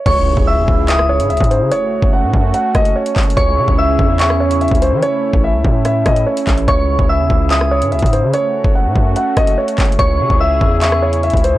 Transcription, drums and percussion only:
0.06 kick, closed hi-hat, crash
0.37 kick
0.68 kick
0.88 clap, closed hi-hat
0.99 cross-stick
1.20 closed hi-hat
1.30 closed hi-hat
1.37 kick, closed hi-hat
1.44 closed hi-hat
1.51 closed hi-hat
1.72 closed hi-hat
2.02 kick
2.33 kick
2.54 closed hi-hat
2.75 kick, cross-stick, closed hi-hat
2.85 closed hi-hat
3.06 closed hi-hat
3.16 kick, clap, closed hi-hat, open hi-hat
3.23 closed hi-hat
3.30 closed hi-hat
3.37 kick, closed hi-hat
3.68 kick
3.99 kick
4.19 clap, closed hi-hat
4.30 cross-stick
4.51 closed hi-hat
4.61 closed hi-hat
4.68 kick, closed hi-hat
4.75 closed hi-hat
4.82 closed hi-hat
5.02 closed hi-hat
5.33 kick
5.65 kick
5.85 cross-stick, closed hi-hat
6.06 kick, cross-stick, closed hi-hat
6.16 closed hi-hat
6.37 closed hi-hat
6.47 kick, clap, closed hi-hat
6.58 closed hi-hat
6.68 kick, closed hi-hat
6.99 kick
7.30 kick
7.50 clap, closed hi-hat
7.61 cross-stick
7.82 closed hi-hat
7.92 closed hi-hat
7.99 kick, closed hi-hat
8.06 closed hi-hat
8.13 closed hi-hat
8.34 closed hi-hat
8.64 kick
8.96 kick
9.16 closed hi-hat
9.37 kick, cross-stick, closed hi-hat
9.47 closed hi-hat
9.68 closed hi-hat
9.78 kick, clap, closed hi-hat, open hi-hat
9.85 closed hi-hat
9.92 closed hi-hat
9.99 kick, closed hi-hat
10.30 kick
10.61 kick
10.81 clap, closed hi-hat
10.92 cross-stick
11.13 closed hi-hat
11.23 closed hi-hat
11.30 kick, closed hi-hat
11.37 closed hi-hat
11.44 closed hi-hat

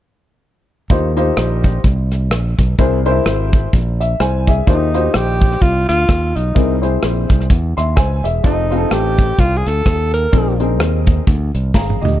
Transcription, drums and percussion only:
0.90 kick, closed hi-hat
1.17 closed hi-hat
1.37 cross-stick, closed hi-hat
1.64 kick, closed hi-hat
1.84 kick, closed hi-hat
2.12 cross-stick, closed hi-hat
2.31 cross-stick, closed hi-hat
2.59 kick, closed hi-hat
2.78 kick, closed hi-hat
3.06 closed hi-hat
3.26 cross-stick, closed hi-hat
3.53 kick, closed hi-hat
3.73 kick, closed hi-hat
4.01 closed hi-hat
4.20 cross-stick, closed hi-hat
4.47 kick, closed hi-hat
4.67 kick, closed hi-hat
4.94 closed hi-hat
5.14 cross-stick, closed hi-hat
5.41 kick, closed hi-hat
5.52 cross-stick
5.62 kick, closed hi-hat
5.89 cross-stick, closed hi-hat
6.09 kick, cross-stick, closed hi-hat
6.37 closed hi-hat
6.56 kick, closed hi-hat
6.83 closed hi-hat
7.03 cross-stick, closed hi-hat
7.29 kick, closed hi-hat
7.40 cross-stick
7.50 kick, closed hi-hat
7.78 cross-stick, closed hi-hat
7.97 kick, cross-stick, closed hi-hat
8.25 closed hi-hat
8.44 kick, closed hi-hat
8.72 closed hi-hat
8.91 cross-stick, closed hi-hat
9.18 kick, closed hi-hat
9.39 kick, closed hi-hat
9.66 cross-stick, closed hi-hat
9.86 kick, cross-stick, closed hi-hat
10.14 closed hi-hat
10.33 kick, closed hi-hat
10.60 closed hi-hat
10.80 cross-stick, closed hi-hat
11.07 kick, closed hi-hat
11.27 kick, closed hi-hat
11.55 closed hi-hat
11.74 kick, snare
11.90 mid tom
12.05 floor tom

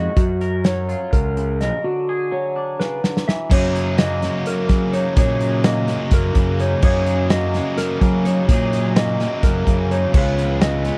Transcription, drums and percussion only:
0.17 kick, closed hi-hat
0.41 closed hi-hat
0.64 snare, closed hi-hat
0.89 closed hi-hat
1.13 kick, closed hi-hat
1.37 closed hi-hat
1.61 snare, closed hi-hat
2.80 snare
3.04 snare
3.17 snare
3.29 snare
3.51 kick, crash
3.75 closed hi-hat
3.98 snare, closed hi-hat
4.22 snare, closed hi-hat
4.46 closed hi-hat
4.69 kick, snare, closed hi-hat
4.93 closed hi-hat
5.16 kick, closed hi-hat
5.40 closed hi-hat
5.64 snare, closed hi-hat
5.88 snare, closed hi-hat
6.11 kick, snare, closed hi-hat
6.35 kick, closed hi-hat
6.59 closed hi-hat
6.82 kick, crash
7.06 closed hi-hat
7.30 snare, closed hi-hat
7.54 snare, closed hi-hat
7.78 snare, closed hi-hat
8.01 kick, closed hi-hat
8.25 closed hi-hat
8.49 kick, closed hi-hat
8.73 closed hi-hat
8.96 snare, closed hi-hat
9.20 snare, closed hi-hat
9.43 kick, snare, closed hi-hat
9.67 kick, closed hi-hat
9.91 closed hi-hat
10.14 kick, crash
10.38 closed hi-hat
10.61 snare, closed hi-hat
10.85 closed hi-hat

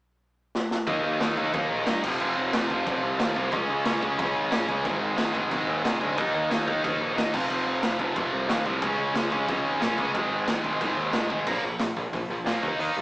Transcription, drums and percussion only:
0.55 snare
0.71 snare
0.87 kick, crash
1.21 snare, crash
1.37 kick
1.53 kick, crash
1.86 snare, crash
2.03 kick, crash
2.20 crash
2.53 snare, crash
2.70 kick
2.86 kick, crash
3.20 snare, crash
3.36 kick
3.52 kick, crash
3.85 snare, crash
4.02 kick
4.19 kick, crash
4.52 snare, crash
4.69 kick
4.85 kick, crash
5.18 snare, crash
5.35 kick
5.51 kick, crash
5.85 snare, crash
6.01 kick
6.18 kick, crash
6.51 snare, crash
6.68 kick
6.84 kick, crash
7.18 snare, crash
7.34 kick, crash
7.50 crash
7.83 snare, crash
8.00 kick
8.16 kick, crash
8.49 snare, crash
8.66 kick
8.82 kick, crash
9.15 snare, crash
9.32 kick
9.48 kick, crash
9.82 snare, crash
9.98 kick
10.15 kick, crash
10.48 snare, crash
10.64 kick
10.81 kick, crash
11.13 snare, crash
11.30 kick
11.46 kick, crash
11.79 snare, open hi-hat
11.97 kick
12.13 kick, open hi-hat
12.47 snare, open hi-hat
12.63 kick
12.80 open hi-hat

